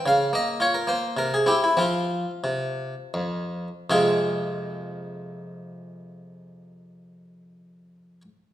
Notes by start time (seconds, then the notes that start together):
0.06 C#3 F5
0.33 A#3 D#5
0.60 F4 C#5
0.74 A#4
0.87 A#3 C5
1.17 C3 A#4
1.34 G#4
1.46 C4 E4 G4
1.64 E4
1.77 F3 C4 F4
2.44 C3
3.14 F2
3.90 F2 C3 G#3 C4 F4 G#4